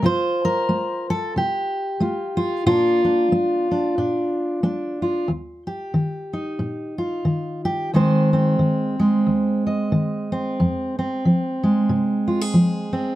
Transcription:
steel-string acoustic guitar
0.02 C3 F4 C5
0.45 A#4
0.69 A3
1.10 A4
1.36 C3 G4
2.00 A3 F4
2.37 F4
2.66 A#2 A#3 D4 F4
3.05 D4
3.32 A#3
3.71 D4
3.98 A#2 D4
4.63 A#3 D4
5.02 F4
5.28 D#2
5.67 G4
5.94 D#3
6.33 D#4
6.59 A#2
6.98 F4
7.25 D#3
7.65 G4
7.94 D#2 D#3 G#3 C4 C5
8.33 C4
8.59 D#3
8.99 G#3
9.27 D#2
9.67 D#5
9.92 D#3
10.32 C4
10.60 F2
10.99 C4
11.25 F3
11.63 G#3
11.89 C3
12.28 F4
12.41 G#4
12.54 F3
12.93 C4

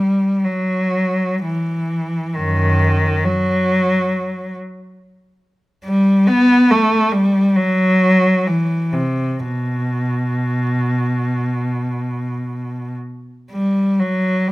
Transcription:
cello
Already playing: G3
0.45 F#3
1.44 E3
2.36 F#2 D#3
3.25 F#3
5.85 G3
6.28 B3
6.71 A3
7.13 G3
7.56 F#3
8.47 E3
8.93 C3
9.40 B2
13.51 G3
14.00 F#3
14.47 G3

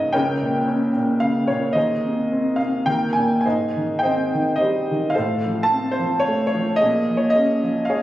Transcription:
upright piano
Already playing: C#2 G#2 C#3 F3 F4 G#4 C#5 D#5
0.13 C#2 A#4 C#5 G5
0.41 A#2
0.68 C#4
0.95 A#2
1.20 C#3 F5
1.47 A#2 C#5
1.73 D#2 G#4 C5 D#5
2.04 C3
2.32 C4
2.56 C3 F5
2.86 D#2 A#4 G5
3.13 G#5
3.17 A#2
3.41 G#5
3.46 G#2 C5 D#5
3.77 D#3
3.99 G5
4.03 C4 C5 D#5
4.34 D#3
4.56 D#5
4.60 G3 G4 C5
4.91 D#3
5.10 F5
5.15 A2 A4 C5
5.46 F3
5.63 A5
5.72 C4
5.92 C5
5.99 F3
6.20 C#5
6.28 A3
6.47 C#5
6.55 F3
6.76 D#5
6.81 A#2 G#4
7.10 F3
7.17 C#5
7.30 D#5
7.35 C#4 G#4
7.63 F3
7.85 F5
7.90 G#3 G#4 C#5

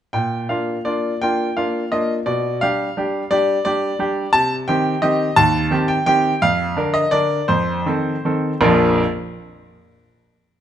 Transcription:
grand piano
0.13 A#2 G5
0.49 A#3 D4 F4 F5
0.85 A#3 D4 F4 D5
1.22 A#3 D4 F4 G5
1.57 A#3 D4 F4 F5
1.92 A#3 D4 F4 D#5
2.26 B2 D5
2.61 G3 D4 G4 F5
2.97 G3 D4 G4
3.31 G3 D4 G4 D5
3.65 G3 D4 G4 D5
3.99 G3 D4 G4
4.33 C3 A5
4.68 D#3 C4 G4 G5
5.02 D#3 C4 G4 D#5
5.36 D#2 A5
5.71 D#3 C4 G4
5.88 G5
6.06 D#3 C4 G4 G5
6.42 F2 F5
6.77 D3 D4 A#4
6.94 D#5
7.11 D3 D4 A#4 D5
7.48 F2 C5
7.86 D#3 C4 A4
8.25 D#3 C4 A4
8.61 A#1 F2 F3 A#3 D4 F4 A#4

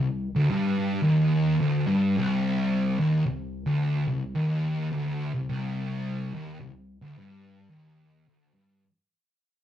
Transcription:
distorted electric guitar
Already playing: C2
0.36 D2
0.50 G2
1.02 D#2
1.61 D2
1.87 G2
2.18 C2
2.99 D#2
3.26 C2
3.66 D2
4.08 C2
4.35 D#2
4.93 D2
5.35 C2
5.50 C2
6.34 D#2
6.60 C2
7.02 D2
7.18 G2
7.70 D#2
8.27 D2
8.54 G2

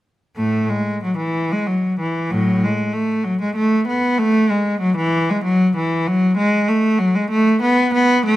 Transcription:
cello
0.37 A2 A3
0.69 G#3
1.04 F#3
1.17 E3
1.52 G#3
1.66 F#3
2.00 E3
2.30 A2 F#3
2.64 G#3
2.93 A3
3.24 F#3
3.41 G#3
3.56 A3
3.88 B3
4.18 A3
4.50 G#3
4.81 F#3
4.97 E3
5.30 G#3
5.44 F#3
5.76 E3
6.07 F#3
6.37 G#3
6.68 A3
6.99 F#3
7.15 G#3
7.30 A3
7.62 B3
7.94 B3
8.26 A3

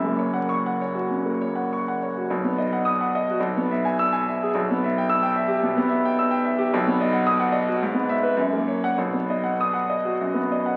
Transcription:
grand piano
Already playing: F#1 F#2
0.04 A#3
0.19 C#5
0.34 F#5
0.49 C#6
0.66 F#5
0.81 C#5
0.95 F#4
1.11 C#3
1.26 A#3
1.41 C#5
1.55 F#5
1.73 C#6
1.88 F#5
2.03 C#5
2.17 F#4
2.30 B1
2.44 B3
2.58 D#5
2.73 F#5
2.85 D#6
3.01 F#5
3.15 D#5
3.31 F#4
3.40 B1
3.57 B3
3.71 E5
3.85 G#5
3.99 E6
4.12 G#5
4.28 E5
4.43 G#4
4.55 B1
4.71 B3
4.84 E5
4.98 G5
5.09 E6
5.23 G5
5.36 E5
5.48 G4
5.63 B2
5.77 B3
5.89 E5
6.05 G5
6.19 E6
6.31 G5
6.45 E5
6.58 G4
6.74 B1
6.87 B3
7.01 D#5
7.13 F#5
7.27 D#6
7.40 F#5
7.52 D#5
7.68 F#4
7.83 G#2
7.94 B3
8.09 E5
8.23 B4
8.37 F#2
8.53 A#3
8.68 C#5
8.84 F#5
8.98 B1
9.13 B3
9.30 D#5
9.44 F#5
9.61 D#6
9.73 F#5
9.90 D#5
10.05 F#4
10.21 F#2
10.34 B3
10.52 D#5
10.66 F#5

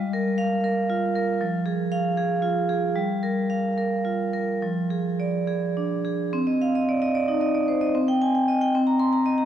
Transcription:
vibraphone
Already playing: G3
0.13 A#4
0.38 F5
0.64 A#4
0.90 F4
1.16 A#4
1.41 F3
1.66 G#4
1.92 F5
2.17 G#4
2.42 F4
2.69 G#4
2.95 G3
3.23 A#4
3.50 F5
3.78 A#4
4.05 F4
4.33 A#4
4.62 F3
4.90 G#4
5.20 D5
5.48 G#4
5.77 D4
6.05 G#4
6.33 C4
6.47 D#5
6.62 F5
6.75 D#5
6.89 D5
7.02 D#5
7.15 D5
7.28 D#4
7.41 D#5
7.55 D5
7.68 C5
7.81 D#5
7.95 C4
8.08 G5
8.22 G#5
8.35 G5
8.48 D#5
8.61 G5
8.75 C4
8.87 A#5
9.00 C6
9.13 A#5
9.26 D#5
9.38 A#5

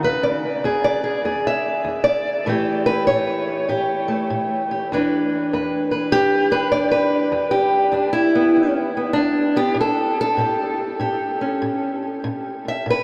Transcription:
steel-string acoustic guitar
0.03 E2 B4
0.23 D5
0.64 E2 G#4
0.84 D5
1.04 G#4
1.25 E2 G#4
1.47 E5
1.85 E2
2.04 D5
2.46 A2 E3 A3 G4
2.86 B4
3.07 A2 C#5
3.69 A2 G4
4.08 A3
4.30 A2
4.71 G4
4.92 E2 E3 D4 B4
5.53 E2 B4
5.91 B4
6.12 E2 G4
6.51 D4 B4
6.72 E2 D5
6.91 B4
7.32 E2
7.51 G4
7.92 E2 D4
8.13 E4
8.35 B3
8.56 E2
8.97 B3
9.13 E2 D4
9.56 B3 G4
9.74 A2
9.81 A4
10.21 A4
10.37 A2 G4
10.99 A2 G4
11.41 C#4
11.62 A2
12.24 A2
12.68 E5
12.86 A2
12.90 B4

